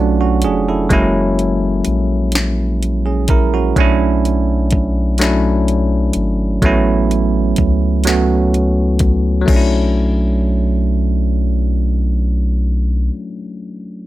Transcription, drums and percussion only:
0.42 closed hi-hat
0.90 kick, closed hi-hat
1.39 closed hi-hat
1.85 closed hi-hat
2.32 snare, closed hi-hat
2.83 closed hi-hat
3.28 kick, closed hi-hat
3.76 kick, closed hi-hat
4.25 closed hi-hat
4.71 kick, closed hi-hat
5.18 snare, closed hi-hat
5.68 closed hi-hat
6.13 closed hi-hat
6.62 kick, closed hi-hat
7.11 closed hi-hat
7.56 kick, closed hi-hat
8.04 snare, closed hi-hat
8.54 closed hi-hat
8.99 kick, closed hi-hat
9.48 kick, crash

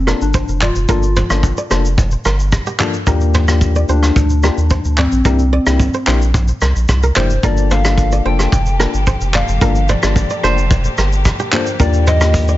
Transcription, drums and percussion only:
0.07 cross-stick
0.21 shaker
0.34 kick, shaker
0.48 shaker
0.62 clap, mid tom
0.75 shaker
0.89 kick, shaker
1.03 shaker
1.16 mid tom, shaker
1.30 cross-stick, shaker
1.43 kick, shaker
1.57 shaker
1.71 cross-stick, shaker
1.85 shaker
1.98 kick, shaker
2.11 shaker
2.25 cross-stick, shaker
2.39 shaker
2.52 kick, cross-stick, shaker
2.66 shaker
2.79 clap, mid tom, shaker
2.94 shaker
3.07 kick, shaker
3.21 shaker
3.34 mid tom, shaker
3.48 cross-stick, shaker
3.61 kick, shaker
3.75 shaker
3.89 shaker
4.03 cross-stick, shaker
4.16 kick, shaker
4.30 shaker
4.43 cross-stick, shaker
4.58 shaker
4.70 kick, shaker
4.85 shaker
4.98 clap, mid tom
5.12 shaker
5.25 kick, shaker
5.39 shaker
5.66 cross-stick, shaker
5.80 kick, shaker
5.94 shaker
6.07 cross-stick, clap, shaker
6.22 shaker
6.34 kick, shaker
6.48 shaker
6.61 cross-stick, shaker
6.76 shaker
6.89 kick, cross-stick, shaker
7.03 shaker
7.16 clap, mid tom, shaker
7.30 shaker
7.43 kick, shaker
7.57 shaker
7.71 mid tom, shaker
7.84 cross-stick, shaker
7.98 kick, shaker
8.12 shaker
8.39 cross-stick, shaker
8.52 kick, shaker
8.66 shaker
8.80 cross-stick
8.94 shaker
9.07 kick, shaker
9.21 shaker
9.34 clap, mid tom
9.48 shaker
9.61 kick, shaker
9.75 shaker
9.89 mid tom, shaker
10.03 cross-stick, shaker
10.16 kick, shaker
10.30 shaker
10.43 cross-stick
10.58 shaker
10.71 kick, shaker
10.84 shaker
10.97 cross-stick, shaker
11.12 shaker
11.25 kick, cross-stick, shaker
11.39 shaker
11.53 clap, mid tom
11.66 shaker
11.80 kick, shaker
11.93 shaker
12.07 mid tom, open hi-hat, shaker
12.21 cross-stick, shaker
12.34 kick, hi-hat pedal, shaker
12.48 shaker

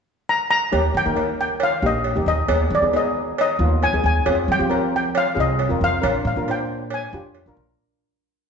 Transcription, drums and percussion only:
0.73 cowbell
1.17 cowbell
1.60 cowbell
2.04 cowbell
2.49 cowbell
2.93 cowbell
3.38 cowbell
3.83 cowbell
4.26 cowbell
4.71 cowbell
5.15 cowbell
5.59 cowbell
6.03 cowbell
6.48 cowbell
6.90 cowbell
7.35 cowbell

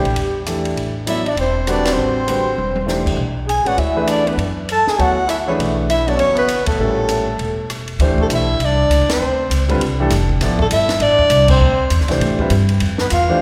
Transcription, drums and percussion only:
0.05 ride
0.16 ride
0.46 cross-stick, hi-hat pedal, ride
0.65 ride
0.77 ride
1.07 hi-hat pedal, ride
1.26 ride
1.37 ride
1.67 cross-stick, hi-hat pedal, ride
1.85 snare, ride
2.28 hi-hat pedal, ride
2.58 mid tom
2.76 mid tom
2.88 snare, hi-hat pedal
3.06 kick, crash
3.49 hi-hat pedal, ride
3.66 ride
3.78 ride
4.07 cross-stick, hi-hat pedal, ride
4.27 ride
4.39 ride
4.69 hi-hat pedal, ride
4.87 snare
4.99 ride
5.29 cross-stick, hi-hat pedal, ride
5.60 ride
5.90 hi-hat pedal, ride
6.08 ride
6.19 ride
6.37 ride
6.48 cross-stick, hi-hat pedal, ride
6.66 kick, ride
7.09 hi-hat pedal, ride
7.39 ride
7.70 cross-stick, hi-hat pedal, ride
7.88 ride
8.00 ride
8.18 kick
8.30 hi-hat pedal, ride
8.60 ride
8.91 hi-hat pedal, ride
9.09 snare, ride
9.51 hi-hat pedal, ride
9.69 ride
9.81 ride
10.10 snare, hi-hat pedal, ride
10.29 kick
10.41 snare, ride
10.59 kick
10.71 hi-hat pedal, ride
10.89 snare, ride
11.00 ride
11.19 kick
11.30 hi-hat pedal, ride
11.48 kick, crash
11.90 hi-hat pedal, ride
12.00 snare
12.08 snare, ride
12.21 ride
12.39 kick
12.50 hi-hat pedal, ride
12.69 ride
12.80 ride
12.98 snare
13.10 hi-hat pedal, ride

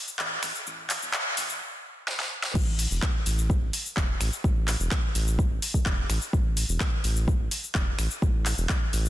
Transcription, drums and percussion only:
0.08 shaker
0.19 clap, shaker
0.43 finger snap, open hi-hat, shaker
0.55 shaker
0.67 shaker
0.90 clap, open hi-hat, shaker
1.02 shaker
1.13 finger snap, clap, shaker
1.37 open hi-hat, shaker
1.49 shaker
2.08 snare
2.20 snare
2.44 snare
2.55 kick, crash, shaker
2.79 open hi-hat, shaker
2.91 shaker
3.02 finger snap, kick, clap, shaker
3.26 open hi-hat, shaker
3.38 shaker
3.50 kick, shaker
3.73 open hi-hat, shaker
3.86 shaker
3.97 kick, clap, shaker
4.21 finger snap, open hi-hat, shaker
4.33 shaker
4.44 kick, shaker
4.68 clap, open hi-hat, shaker
4.80 shaker
4.91 finger snap, kick, clap, shaker
5.15 open hi-hat, shaker
5.27 shaker
5.39 kick, shaker
5.62 open hi-hat, shaker
5.74 kick, shaker
5.86 kick, clap, shaker
6.10 finger snap, open hi-hat, shaker
6.22 shaker
6.33 kick, shaker
6.57 open hi-hat, shaker
6.69 shaker
6.80 finger snap, kick, clap, shaker
7.04 open hi-hat, shaker
7.16 shaker
7.28 kick, shaker
7.51 open hi-hat, shaker
7.64 shaker
7.75 kick, clap, shaker
7.99 finger snap, open hi-hat, shaker
8.11 shaker
8.22 kick, shaker
8.46 clap, open hi-hat, shaker
8.58 shaker
8.69 finger snap, kick, clap, shaker
8.93 open hi-hat, shaker
9.05 shaker

